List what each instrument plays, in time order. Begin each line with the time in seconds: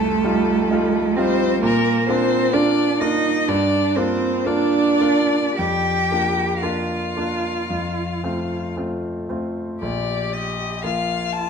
Already playing: grand piano C2 G3 D#4 F4, cello A3, violin A4
0.24 grand piano G3 D#4 F4
0.71 grand piano G3 D#4 F4
1.16 grand piano G3 D#4 F4, cello C4, violin C5
1.62 grand piano A#2, cello A#3, violin A#4
2.08 grand piano A#3 D4 F4, cello C4, violin C5
2.53 grand piano A#3 D4 F4, cello D4, violin D5
3.00 grand piano A#3 D4 F4, cello D#4, violin D#5
3.48 grand piano G2, cello D4, violin D5
3.95 grand piano A#3 D4 F4, cello C4, violin C5
4.44 grand piano A#3 D4 F4, cello D4, violin D5
5.01 grand piano A#3 D4 F4
5.56 grand piano F2, cello G4, violin G5
6.12 grand piano A#3 D4 F4
6.62 grand piano A#3 D4 F4, cello F4, violin F5
7.16 grand piano A#3 D4 F4
7.70 grand piano F2
8.24 grand piano A3 C4 F4
8.77 grand piano A3 C4 F4
9.29 grand piano A3 C4 F4
9.81 grand piano A#1, cello G4, violin D5
10.33 violin D#5
10.84 grand piano F3 A#3 F4, cello F4, violin F5
11.33 violin A5